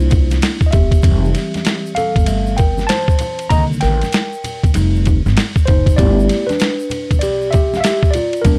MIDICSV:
0, 0, Header, 1, 4, 480
1, 0, Start_track
1, 0, Tempo, 618557
1, 802, Time_signature, 4, 2, 24, 8
1, 6664, End_track
2, 0, Start_track
2, 0, Title_t, "Tine electric piano"
2, 0, Program_c, 0, 4
2, 0, Note_on_c, 0, 58, 55
2, 0, Note_on_c, 0, 62, 49
2, 0, Note_on_c, 0, 64, 60
2, 0, Note_on_c, 0, 65, 67
2, 0, Note_on_c, 0, 72, 92
2, 285, Note_off_c, 0, 72, 0
2, 294, Note_off_c, 0, 65, 0
2, 515, Note_on_c, 0, 75, 62
2, 533, Note_off_c, 0, 58, 0
2, 534, Note_off_c, 0, 62, 0
2, 539, Note_off_c, 0, 64, 0
2, 551, Note_on_c, 0, 76, 78
2, 558, Note_off_c, 0, 75, 0
2, 565, Note_on_c, 0, 67, 63
2, 797, Note_on_c, 0, 55, 55
2, 803, Note_on_c, 0, 60, 49
2, 806, Note_on_c, 0, 52, 61
2, 1486, Note_off_c, 0, 76, 0
2, 1493, Note_off_c, 0, 67, 0
2, 1513, Note_on_c, 0, 77, 98
2, 1532, Note_on_c, 0, 69, 70
2, 1750, Note_off_c, 0, 55, 0
2, 1760, Note_on_c, 0, 55, 47
2, 1762, Note_on_c, 0, 57, 45
2, 1762, Note_on_c, 0, 76, 51
2, 1976, Note_off_c, 0, 69, 0
2, 1977, Note_off_c, 0, 55, 0
2, 1978, Note_off_c, 0, 57, 0
2, 1978, Note_off_c, 0, 76, 0
2, 1992, Note_on_c, 0, 79, 87
2, 2009, Note_on_c, 0, 70, 69
2, 2012, Note_off_c, 0, 77, 0
2, 2220, Note_off_c, 0, 79, 0
2, 2225, Note_on_c, 0, 81, 100
2, 2229, Note_off_c, 0, 70, 0
2, 2245, Note_on_c, 0, 72, 75
2, 2683, Note_off_c, 0, 81, 0
2, 2692, Note_off_c, 0, 60, 0
2, 2693, Note_off_c, 0, 52, 0
2, 2693, Note_off_c, 0, 72, 0
2, 2712, Note_on_c, 0, 82, 115
2, 2716, Note_on_c, 0, 51, 60
2, 2723, Note_on_c, 0, 58, 56
2, 2727, Note_on_c, 0, 50, 67
2, 2729, Note_on_c, 0, 75, 85
2, 2823, Note_off_c, 0, 82, 0
2, 2835, Note_off_c, 0, 75, 0
2, 2953, Note_on_c, 0, 79, 96
2, 2967, Note_on_c, 0, 70, 67
2, 3066, Note_off_c, 0, 51, 0
2, 3069, Note_off_c, 0, 58, 0
2, 3071, Note_off_c, 0, 50, 0
2, 3647, Note_off_c, 0, 79, 0
2, 3654, Note_off_c, 0, 70, 0
2, 3676, Note_on_c, 0, 55, 54
2, 3683, Note_on_c, 0, 57, 54
2, 3687, Note_on_c, 0, 63, 64
2, 4026, Note_off_c, 0, 55, 0
2, 4029, Note_off_c, 0, 57, 0
2, 4031, Note_off_c, 0, 63, 0
2, 4389, Note_on_c, 0, 72, 84
2, 4411, Note_on_c, 0, 63, 68
2, 4629, Note_on_c, 0, 74, 108
2, 4630, Note_off_c, 0, 63, 0
2, 4642, Note_on_c, 0, 57, 59
2, 4643, Note_off_c, 0, 72, 0
2, 4647, Note_on_c, 0, 59, 53
2, 4648, Note_on_c, 0, 64, 63
2, 4648, Note_on_c, 0, 67, 88
2, 4989, Note_off_c, 0, 57, 0
2, 4992, Note_off_c, 0, 59, 0
2, 4992, Note_off_c, 0, 64, 0
2, 5014, Note_off_c, 0, 67, 0
2, 5018, Note_on_c, 0, 71, 83
2, 5042, Note_on_c, 0, 62, 65
2, 5044, Note_off_c, 0, 74, 0
2, 5573, Note_off_c, 0, 62, 0
2, 5581, Note_on_c, 0, 74, 92
2, 5610, Note_off_c, 0, 71, 0
2, 5611, Note_on_c, 0, 67, 84
2, 5825, Note_on_c, 0, 76, 94
2, 5830, Note_off_c, 0, 67, 0
2, 5840, Note_off_c, 0, 74, 0
2, 5855, Note_on_c, 0, 67, 77
2, 6030, Note_on_c, 0, 77, 76
2, 6037, Note_off_c, 0, 67, 0
2, 6042, Note_off_c, 0, 76, 0
2, 6057, Note_on_c, 0, 76, 104
2, 6075, Note_off_c, 0, 77, 0
2, 6088, Note_on_c, 0, 67, 80
2, 6290, Note_on_c, 0, 74, 101
2, 6292, Note_off_c, 0, 76, 0
2, 6309, Note_off_c, 0, 67, 0
2, 6323, Note_on_c, 0, 65, 73
2, 6531, Note_on_c, 0, 70, 94
2, 6546, Note_off_c, 0, 65, 0
2, 6550, Note_on_c, 0, 55, 55
2, 6554, Note_off_c, 0, 74, 0
2, 6558, Note_on_c, 0, 58, 53
2, 6561, Note_on_c, 0, 62, 76
2, 6664, Note_off_c, 0, 55, 0
2, 6664, Note_off_c, 0, 58, 0
2, 6664, Note_off_c, 0, 62, 0
2, 6664, Note_off_c, 0, 70, 0
2, 6664, End_track
3, 0, Start_track
3, 0, Title_t, "Upright bass"
3, 0, Program_c, 1, 32
3, 0, Note_on_c, 1, 36, 95
3, 295, Note_off_c, 1, 36, 0
3, 572, Note_on_c, 1, 28, 86
3, 785, Note_off_c, 1, 28, 0
3, 805, Note_on_c, 1, 29, 96
3, 1021, Note_off_c, 1, 29, 0
3, 1675, Note_on_c, 1, 31, 79
3, 2212, Note_off_c, 1, 31, 0
3, 2721, Note_on_c, 1, 36, 87
3, 2939, Note_off_c, 1, 36, 0
3, 2967, Note_on_c, 1, 33, 94
3, 3106, Note_off_c, 1, 33, 0
3, 3598, Note_on_c, 1, 34, 78
3, 3674, Note_off_c, 1, 34, 0
3, 3687, Note_on_c, 1, 29, 107
3, 4050, Note_off_c, 1, 29, 0
3, 4082, Note_on_c, 1, 31, 97
3, 4156, Note_off_c, 1, 31, 0
3, 4413, Note_on_c, 1, 30, 93
3, 4625, Note_off_c, 1, 30, 0
3, 4642, Note_on_c, 1, 31, 98
3, 4859, Note_off_c, 1, 31, 0
3, 5518, Note_on_c, 1, 35, 77
3, 6054, Note_off_c, 1, 35, 0
3, 6557, Note_on_c, 1, 28, 98
3, 6664, Note_off_c, 1, 28, 0
3, 6664, End_track
4, 0, Start_track
4, 0, Title_t, "Drums"
4, 82, Note_on_c, 9, 64, 75
4, 82, Note_on_c, 9, 82, 56
4, 86, Note_on_c, 9, 51, 50
4, 96, Note_on_c, 9, 36, 81
4, 159, Note_off_c, 9, 64, 0
4, 159, Note_off_c, 9, 82, 0
4, 163, Note_off_c, 9, 51, 0
4, 173, Note_off_c, 9, 36, 0
4, 238, Note_on_c, 9, 63, 71
4, 238, Note_on_c, 9, 82, 52
4, 243, Note_on_c, 9, 51, 45
4, 252, Note_on_c, 9, 38, 35
4, 315, Note_off_c, 9, 63, 0
4, 315, Note_off_c, 9, 82, 0
4, 321, Note_off_c, 9, 51, 0
4, 325, Note_on_c, 9, 82, 65
4, 328, Note_on_c, 9, 44, 62
4, 328, Note_on_c, 9, 51, 87
4, 330, Note_off_c, 9, 38, 0
4, 335, Note_on_c, 9, 38, 105
4, 403, Note_off_c, 9, 82, 0
4, 406, Note_off_c, 9, 44, 0
4, 406, Note_off_c, 9, 51, 0
4, 412, Note_off_c, 9, 38, 0
4, 472, Note_on_c, 9, 36, 97
4, 477, Note_on_c, 9, 82, 46
4, 549, Note_off_c, 9, 36, 0
4, 554, Note_off_c, 9, 82, 0
4, 562, Note_on_c, 9, 51, 56
4, 566, Note_on_c, 9, 64, 70
4, 566, Note_on_c, 9, 82, 45
4, 569, Note_on_c, 9, 36, 104
4, 640, Note_off_c, 9, 51, 0
4, 643, Note_off_c, 9, 64, 0
4, 643, Note_off_c, 9, 82, 0
4, 647, Note_off_c, 9, 36, 0
4, 710, Note_on_c, 9, 36, 77
4, 713, Note_on_c, 9, 51, 44
4, 722, Note_on_c, 9, 82, 48
4, 788, Note_off_c, 9, 36, 0
4, 790, Note_off_c, 9, 51, 0
4, 792, Note_off_c, 9, 82, 0
4, 792, Note_on_c, 9, 82, 60
4, 802, Note_on_c, 9, 36, 98
4, 807, Note_on_c, 9, 51, 75
4, 870, Note_off_c, 9, 82, 0
4, 879, Note_off_c, 9, 36, 0
4, 885, Note_off_c, 9, 51, 0
4, 967, Note_on_c, 9, 82, 47
4, 1045, Note_off_c, 9, 82, 0
4, 1045, Note_on_c, 9, 51, 64
4, 1048, Note_on_c, 9, 82, 38
4, 1058, Note_on_c, 9, 38, 32
4, 1122, Note_off_c, 9, 51, 0
4, 1126, Note_off_c, 9, 82, 0
4, 1136, Note_off_c, 9, 38, 0
4, 1197, Note_on_c, 9, 51, 36
4, 1206, Note_on_c, 9, 63, 64
4, 1206, Note_on_c, 9, 82, 46
4, 1208, Note_on_c, 9, 38, 39
4, 1274, Note_off_c, 9, 51, 0
4, 1278, Note_on_c, 9, 44, 43
4, 1278, Note_on_c, 9, 51, 59
4, 1284, Note_off_c, 9, 63, 0
4, 1284, Note_off_c, 9, 82, 0
4, 1285, Note_on_c, 9, 82, 70
4, 1286, Note_off_c, 9, 38, 0
4, 1292, Note_on_c, 9, 38, 115
4, 1356, Note_off_c, 9, 44, 0
4, 1356, Note_off_c, 9, 51, 0
4, 1362, Note_off_c, 9, 82, 0
4, 1370, Note_off_c, 9, 38, 0
4, 1445, Note_on_c, 9, 82, 46
4, 1522, Note_off_c, 9, 82, 0
4, 1523, Note_on_c, 9, 51, 60
4, 1531, Note_on_c, 9, 64, 58
4, 1531, Note_on_c, 9, 82, 45
4, 1601, Note_off_c, 9, 51, 0
4, 1609, Note_off_c, 9, 64, 0
4, 1609, Note_off_c, 9, 82, 0
4, 1675, Note_on_c, 9, 36, 87
4, 1678, Note_on_c, 9, 51, 41
4, 1695, Note_on_c, 9, 82, 43
4, 1752, Note_off_c, 9, 36, 0
4, 1755, Note_off_c, 9, 51, 0
4, 1757, Note_on_c, 9, 51, 76
4, 1766, Note_off_c, 9, 82, 0
4, 1766, Note_on_c, 9, 63, 47
4, 1766, Note_on_c, 9, 82, 64
4, 1834, Note_off_c, 9, 51, 0
4, 1844, Note_off_c, 9, 63, 0
4, 1844, Note_off_c, 9, 82, 0
4, 1911, Note_on_c, 9, 82, 42
4, 1989, Note_off_c, 9, 82, 0
4, 1999, Note_on_c, 9, 64, 67
4, 1999, Note_on_c, 9, 82, 56
4, 2000, Note_on_c, 9, 51, 49
4, 2014, Note_on_c, 9, 36, 79
4, 2077, Note_off_c, 9, 51, 0
4, 2077, Note_off_c, 9, 64, 0
4, 2077, Note_off_c, 9, 82, 0
4, 2091, Note_off_c, 9, 36, 0
4, 2155, Note_on_c, 9, 63, 70
4, 2155, Note_on_c, 9, 82, 49
4, 2167, Note_on_c, 9, 38, 33
4, 2232, Note_off_c, 9, 63, 0
4, 2232, Note_off_c, 9, 82, 0
4, 2243, Note_on_c, 9, 44, 59
4, 2243, Note_on_c, 9, 51, 89
4, 2245, Note_off_c, 9, 38, 0
4, 2248, Note_on_c, 9, 82, 62
4, 2249, Note_on_c, 9, 38, 101
4, 2320, Note_off_c, 9, 44, 0
4, 2320, Note_off_c, 9, 51, 0
4, 2326, Note_off_c, 9, 82, 0
4, 2327, Note_off_c, 9, 38, 0
4, 2390, Note_on_c, 9, 36, 94
4, 2401, Note_on_c, 9, 82, 47
4, 2468, Note_off_c, 9, 36, 0
4, 2473, Note_on_c, 9, 51, 61
4, 2479, Note_off_c, 9, 82, 0
4, 2485, Note_on_c, 9, 64, 67
4, 2485, Note_on_c, 9, 82, 51
4, 2551, Note_off_c, 9, 51, 0
4, 2563, Note_off_c, 9, 64, 0
4, 2563, Note_off_c, 9, 82, 0
4, 2629, Note_on_c, 9, 51, 46
4, 2647, Note_on_c, 9, 82, 50
4, 2707, Note_off_c, 9, 51, 0
4, 2719, Note_on_c, 9, 36, 96
4, 2720, Note_on_c, 9, 51, 71
4, 2724, Note_off_c, 9, 82, 0
4, 2724, Note_on_c, 9, 82, 61
4, 2797, Note_off_c, 9, 36, 0
4, 2797, Note_off_c, 9, 51, 0
4, 2802, Note_off_c, 9, 82, 0
4, 2890, Note_on_c, 9, 82, 47
4, 2955, Note_on_c, 9, 51, 64
4, 2968, Note_off_c, 9, 82, 0
4, 2968, Note_on_c, 9, 38, 34
4, 2969, Note_on_c, 9, 82, 40
4, 3032, Note_off_c, 9, 51, 0
4, 3046, Note_off_c, 9, 38, 0
4, 3047, Note_off_c, 9, 82, 0
4, 3116, Note_on_c, 9, 51, 37
4, 3127, Note_on_c, 9, 38, 35
4, 3128, Note_on_c, 9, 63, 67
4, 3128, Note_on_c, 9, 82, 46
4, 3193, Note_off_c, 9, 51, 0
4, 3201, Note_on_c, 9, 44, 38
4, 3201, Note_on_c, 9, 51, 59
4, 3202, Note_off_c, 9, 82, 0
4, 3202, Note_on_c, 9, 82, 68
4, 3204, Note_off_c, 9, 38, 0
4, 3205, Note_off_c, 9, 63, 0
4, 3215, Note_on_c, 9, 38, 105
4, 3279, Note_off_c, 9, 44, 0
4, 3279, Note_off_c, 9, 51, 0
4, 3280, Note_off_c, 9, 82, 0
4, 3293, Note_off_c, 9, 38, 0
4, 3358, Note_on_c, 9, 82, 49
4, 3436, Note_off_c, 9, 82, 0
4, 3445, Note_on_c, 9, 64, 56
4, 3445, Note_on_c, 9, 82, 44
4, 3449, Note_on_c, 9, 51, 58
4, 3523, Note_off_c, 9, 64, 0
4, 3523, Note_off_c, 9, 82, 0
4, 3527, Note_off_c, 9, 51, 0
4, 3597, Note_on_c, 9, 36, 83
4, 3601, Note_on_c, 9, 51, 38
4, 3612, Note_on_c, 9, 82, 49
4, 3675, Note_off_c, 9, 36, 0
4, 3679, Note_off_c, 9, 51, 0
4, 3679, Note_on_c, 9, 51, 76
4, 3689, Note_off_c, 9, 82, 0
4, 3690, Note_on_c, 9, 63, 47
4, 3690, Note_on_c, 9, 82, 64
4, 3757, Note_off_c, 9, 51, 0
4, 3768, Note_off_c, 9, 63, 0
4, 3768, Note_off_c, 9, 82, 0
4, 3843, Note_on_c, 9, 82, 45
4, 3921, Note_off_c, 9, 82, 0
4, 3923, Note_on_c, 9, 51, 45
4, 3929, Note_on_c, 9, 64, 73
4, 3929, Note_on_c, 9, 82, 53
4, 3934, Note_on_c, 9, 36, 79
4, 4000, Note_off_c, 9, 51, 0
4, 4007, Note_off_c, 9, 64, 0
4, 4007, Note_off_c, 9, 82, 0
4, 4012, Note_off_c, 9, 36, 0
4, 4083, Note_on_c, 9, 63, 68
4, 4083, Note_on_c, 9, 82, 53
4, 4088, Note_on_c, 9, 38, 34
4, 4160, Note_off_c, 9, 63, 0
4, 4160, Note_off_c, 9, 82, 0
4, 4164, Note_on_c, 9, 44, 62
4, 4164, Note_on_c, 9, 51, 84
4, 4166, Note_off_c, 9, 38, 0
4, 4171, Note_on_c, 9, 38, 108
4, 4175, Note_on_c, 9, 82, 58
4, 4242, Note_off_c, 9, 44, 0
4, 4242, Note_off_c, 9, 51, 0
4, 4248, Note_off_c, 9, 38, 0
4, 4253, Note_off_c, 9, 82, 0
4, 4313, Note_on_c, 9, 36, 97
4, 4319, Note_on_c, 9, 82, 49
4, 4390, Note_off_c, 9, 36, 0
4, 4397, Note_off_c, 9, 82, 0
4, 4403, Note_on_c, 9, 51, 57
4, 4410, Note_on_c, 9, 36, 100
4, 4412, Note_on_c, 9, 64, 67
4, 4412, Note_on_c, 9, 82, 46
4, 4480, Note_off_c, 9, 51, 0
4, 4488, Note_off_c, 9, 36, 0
4, 4490, Note_off_c, 9, 64, 0
4, 4490, Note_off_c, 9, 82, 0
4, 4550, Note_on_c, 9, 36, 80
4, 4553, Note_on_c, 9, 51, 44
4, 4565, Note_on_c, 9, 82, 54
4, 4628, Note_off_c, 9, 36, 0
4, 4631, Note_off_c, 9, 51, 0
4, 4639, Note_off_c, 9, 82, 0
4, 4639, Note_on_c, 9, 82, 59
4, 4642, Note_on_c, 9, 36, 104
4, 4646, Note_on_c, 9, 51, 69
4, 4717, Note_off_c, 9, 82, 0
4, 4719, Note_off_c, 9, 36, 0
4, 4724, Note_off_c, 9, 51, 0
4, 4808, Note_on_c, 9, 82, 50
4, 4884, Note_on_c, 9, 51, 62
4, 4885, Note_off_c, 9, 82, 0
4, 4890, Note_on_c, 9, 82, 39
4, 4898, Note_on_c, 9, 38, 33
4, 4962, Note_off_c, 9, 51, 0
4, 4968, Note_off_c, 9, 82, 0
4, 4975, Note_off_c, 9, 38, 0
4, 5038, Note_on_c, 9, 51, 37
4, 5043, Note_on_c, 9, 63, 62
4, 5043, Note_on_c, 9, 82, 46
4, 5049, Note_on_c, 9, 38, 39
4, 5115, Note_off_c, 9, 51, 0
4, 5118, Note_off_c, 9, 82, 0
4, 5118, Note_on_c, 9, 82, 70
4, 5120, Note_off_c, 9, 63, 0
4, 5120, Note_on_c, 9, 44, 38
4, 5120, Note_on_c, 9, 51, 58
4, 5126, Note_off_c, 9, 38, 0
4, 5134, Note_on_c, 9, 38, 111
4, 5196, Note_off_c, 9, 82, 0
4, 5197, Note_off_c, 9, 44, 0
4, 5197, Note_off_c, 9, 51, 0
4, 5211, Note_off_c, 9, 38, 0
4, 5272, Note_on_c, 9, 82, 47
4, 5349, Note_off_c, 9, 82, 0
4, 5355, Note_on_c, 9, 64, 62
4, 5355, Note_on_c, 9, 82, 43
4, 5364, Note_on_c, 9, 51, 59
4, 5432, Note_off_c, 9, 64, 0
4, 5432, Note_off_c, 9, 82, 0
4, 5442, Note_off_c, 9, 51, 0
4, 5515, Note_on_c, 9, 36, 85
4, 5517, Note_on_c, 9, 51, 40
4, 5528, Note_on_c, 9, 82, 44
4, 5593, Note_off_c, 9, 36, 0
4, 5595, Note_off_c, 9, 51, 0
4, 5597, Note_on_c, 9, 51, 76
4, 5605, Note_off_c, 9, 82, 0
4, 5605, Note_on_c, 9, 63, 47
4, 5605, Note_on_c, 9, 82, 62
4, 5675, Note_off_c, 9, 51, 0
4, 5683, Note_off_c, 9, 63, 0
4, 5683, Note_off_c, 9, 82, 0
4, 5754, Note_on_c, 9, 82, 46
4, 5831, Note_off_c, 9, 82, 0
4, 5840, Note_on_c, 9, 51, 49
4, 5845, Note_on_c, 9, 64, 76
4, 5845, Note_on_c, 9, 82, 57
4, 5852, Note_on_c, 9, 36, 84
4, 5917, Note_off_c, 9, 51, 0
4, 5923, Note_off_c, 9, 64, 0
4, 5923, Note_off_c, 9, 82, 0
4, 5930, Note_off_c, 9, 36, 0
4, 6003, Note_on_c, 9, 63, 74
4, 6003, Note_on_c, 9, 82, 55
4, 6004, Note_on_c, 9, 38, 36
4, 6080, Note_off_c, 9, 63, 0
4, 6080, Note_off_c, 9, 82, 0
4, 6082, Note_off_c, 9, 38, 0
4, 6082, Note_on_c, 9, 44, 64
4, 6082, Note_on_c, 9, 51, 88
4, 6088, Note_on_c, 9, 38, 103
4, 6090, Note_on_c, 9, 82, 67
4, 6159, Note_off_c, 9, 44, 0
4, 6159, Note_off_c, 9, 51, 0
4, 6166, Note_off_c, 9, 38, 0
4, 6167, Note_off_c, 9, 82, 0
4, 6229, Note_on_c, 9, 36, 100
4, 6240, Note_on_c, 9, 82, 53
4, 6306, Note_off_c, 9, 36, 0
4, 6313, Note_on_c, 9, 51, 61
4, 6318, Note_off_c, 9, 82, 0
4, 6326, Note_on_c, 9, 64, 71
4, 6326, Note_on_c, 9, 82, 49
4, 6391, Note_off_c, 9, 51, 0
4, 6403, Note_off_c, 9, 64, 0
4, 6403, Note_off_c, 9, 82, 0
4, 6465, Note_on_c, 9, 51, 42
4, 6486, Note_on_c, 9, 82, 48
4, 6542, Note_off_c, 9, 51, 0
4, 6554, Note_on_c, 9, 51, 69
4, 6556, Note_on_c, 9, 36, 91
4, 6557, Note_off_c, 9, 82, 0
4, 6557, Note_on_c, 9, 82, 62
4, 6631, Note_off_c, 9, 51, 0
4, 6634, Note_off_c, 9, 36, 0
4, 6635, Note_off_c, 9, 82, 0
4, 6664, End_track
0, 0, End_of_file